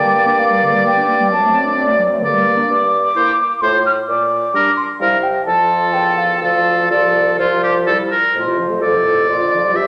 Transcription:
Already playing: G2 A#3 D5 G5
0.04 G3
0.15 A#3
0.26 D4
0.38 A#3 F5
0.50 G3
0.62 D3
0.74 G3
0.85 A#3 G5
0.97 D4
1.08 A#3
1.20 G3
1.31 F#2 F#3 C4 A5
1.42 A3
1.54 C4
1.64 D4
1.76 C4 D5
1.87 A3
1.99 F#3
2.10 A3
2.22 G2 D3 A#3 D5
2.34 G3
2.47 A#3
2.57 D4
2.69 G2 D6
3.15 A#3 E4 C5
3.61 A2 A3 F4 C5 C6
3.86 F6
4.08 A#2 D6
4.54 G3 D4 A#4
4.77 C6
5.00 C3 G3 E4 A#4 F5
5.23 G5
5.46 F2 F3 F4 A4 A5
5.93 E2 G5
6.18 F5
6.41 D2 F3 F4 A4 F5
6.90 C2 F3 F4 A4 D5
7.39 F3 F4 C5
7.63 G4
7.87 C2 G3 E4 A4
8.11 A#4
8.35 F2 A2 F4 C5
8.46 C3
8.59 F3
8.70 A3
8.81 F3 A4 D5
8.94 C3
9.06 A2
9.18 C3
9.28 A#2 F4 D5
9.42 D3
9.54 F3
9.65 G3
9.74 E2 G2 G4 C5 E5

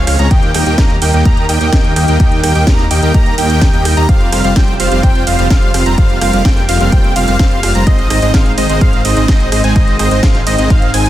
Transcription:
Already playing: F3 G#3 C4
0.07 C#2 G#3 C#4 F4 C#5 F5, cross-stick, open hi-hat, ride
0.19 C#2 G#3 C#4 F4 C#5 A#5, closed hi-hat
0.31 D#2 D#3 G3 A#3 D#4 G4 D#5 G5, kick, closed hi-hat
0.43 closed hi-hat
0.54 D#2 A#3 D#4 G4 D#5 G5, cross-stick, open hi-hat, ride
0.66 D#2 A#3 D#4 G4 D#5 G5, closed hi-hat
0.78 D#2 A#3 G4 A#5, kick, snare, closed hi-hat
0.90 closed hi-hat
1.02 D#2 A#3 D#4 G4 D#5 G5, open hi-hat, ride
1.14 D#2 A#3 D#4 G4 D#5 G5, closed hi-hat
1.25 D#2 A#3 D#4 G4 D#5 A#5, kick, closed hi-hat
1.37 closed hi-hat
1.49 D#2 A#3 D#4 G4 D#5 G5, open hi-hat, ride
1.61 D#2 A#3 D#4 G4 D#5 G5, closed hi-hat
1.72 D#2 A#3 D#4 G4 D#5 G5, kick, snare, closed hi-hat
1.84 closed hi-hat
1.96 D#2 A#3 D#4 G4 D#5 G5, cross-stick, open hi-hat, ride
2.08 D#2 A#3 D#4 G4 D#5 G5, closed hi-hat
2.20 D#2 A#3 D#4 G4 D#5 G5, kick, closed hi-hat
2.32 closed hi-hat
2.43 D#2 A#3 D#4 G4 D#5 G5, cross-stick, open hi-hat, ride
2.55 D#2 A#3 D#4 G4 D#5 G5, closed hi-hat
2.67 D#2 G4 A#5, kick, snare, closed hi-hat
2.79 snare, closed hi-hat
2.91 D#2 A#3 D#4 G4 D#5 G5, open hi-hat, ride
3.02 D#2 A#3 D#4 G4 D#5 G5, closed hi-hat
3.14 D#2 A#5, kick, closed hi-hat
3.26 closed hi-hat
3.38 D#2 A#3 D#4 G4 D#5 G5, open hi-hat, ride
3.50 closed hi-hat
3.61 kick, snare, closed hi-hat
3.73 D#2 A#3 D#4 G4 D#5 G5, closed hi-hat
3.85 cross-stick, open hi-hat, ride
3.97 D#2 A#3 D#4 G4 D#5 A#5, closed hi-hat
4.09 F1 F3 G3 C4 F4 C5 F5, kick, closed hi-hat
4.21 closed hi-hat
4.32 F1 G3 C4 F4 C5 F5, cross-stick, open hi-hat, ride
4.44 F1 G3 C4 F4 C5 F5, closed hi-hat
4.56 F1 G3 C4 F4 C5 G5, kick, snare, closed hi-hat
4.68 closed hi-hat
4.80 F1 G3 C4 F4 C5 F5, open hi-hat, ride
4.92 F1 G3 C4 F4 C5 F5, closed hi-hat
5.03 F1 G3 C4 F4 C5 G5, kick, closed hi-hat
5.15 closed hi-hat
5.27 F1 G3 C4 F4 C5 F5, open hi-hat, ride
5.39 F1 G3 C4 F4 C5 F5, closed hi-hat
5.50 F1 G3 C4 F4 C5 F5, kick, snare, closed hi-hat
5.62 closed hi-hat
5.74 F1 G3 C4 F4 C5 F5, cross-stick, open hi-hat, ride
5.86 F1 G3 C4 F4 C5 A#5, closed hi-hat
5.98 F1 G3 A#3 C4 F4 C5 F5, kick, closed hi-hat
6.10 closed hi-hat
6.21 F1 G3 C4 F4 C5 F5, cross-stick, open hi-hat, ride
6.33 F1 G3 C4 F4 C5 F5, closed hi-hat
6.45 F1 C4 F4 C5 G5, kick, snare, closed hi-hat
6.57 snare, closed hi-hat
6.69 F1 G3 C4 F4 C5 F5, open hi-hat, ride
6.81 F1 G3 C4 F4 C5 F5, closed hi-hat
6.92 F1 G3 C4 F4 C5 G5, kick, closed hi-hat
7.04 closed hi-hat
7.16 F1 G3 C4 F4 C5 F5, open hi-hat, ride
7.28 F1 G3 C4 F4 C5 F5, closed hi-hat
7.39 F1 G3 F4 C5 F5, kick, snare, closed hi-hat
7.51 closed hi-hat
7.63 F1 G3 C4 F4 C5 F5, cross-stick, open hi-hat, ride
7.75 F1 G3 C4 F4 C5 A#5, closed hi-hat
7.87 G#1 D#3 G#3 C4 D#4 C5 D#5, kick, closed hi-hat
7.99 closed hi-hat
8.10 G#1 G#3 C4 D#4 C5 D#5, cross-stick, open hi-hat, ride
8.22 G#1 G#3 C4 D#4 C5 D#5, closed hi-hat
8.34 G#1 G#3 C4 D#4 C5 F5, kick, snare, closed hi-hat
8.46 closed hi-hat
8.58 G#1 G#3 C4 D#4 C5 D#5, open hi-hat, ride
8.69 G#1 G#3 C4 D#4 C5 D#5, closed hi-hat
8.81 G#1 G#3 C4 D#4 C5 F5, kick, closed hi-hat
8.93 closed hi-hat
9.05 G#1 G#3 C4 D#4 C5 D#5, open hi-hat, ride
9.17 G#1 G#3 C4 D#4 C5 D#5, closed hi-hat
9.28 G#1 G#3 C4 D#4 C5 D#5, kick, snare, closed hi-hat
9.40 closed hi-hat
9.52 G#1 G#3 C4 D#4 C5 D#5, cross-stick, open hi-hat, ride
9.64 G#1 G#3 C4 D#4 C5 G#5, closed hi-hat
9.76 G#1 G#3 C4 D#4 C5 D#5, kick, closed hi-hat
9.88 closed hi-hat
9.99 G#1 G#3 C4 D#4 C5 D#5, cross-stick, open hi-hat, ride
10.11 G#1 G#3 C4 D#4 C5 D#5, closed hi-hat
10.23 G#1 G#3 C4 D#4 C5 F5, kick, snare, closed hi-hat
10.35 snare, closed hi-hat
10.47 G#1 G#3 C4 D#4 C5 D#5, open hi-hat, ride
10.58 G#1 G#3 C4 D#4 C5 D#5, closed hi-hat
10.70 G#1 G#3 C4 D#4 C5 F5, kick, closed hi-hat
10.82 closed hi-hat
10.94 G#1 G#3 C4 D#4 C5 G#5, open hi-hat, ride
11.06 closed hi-hat

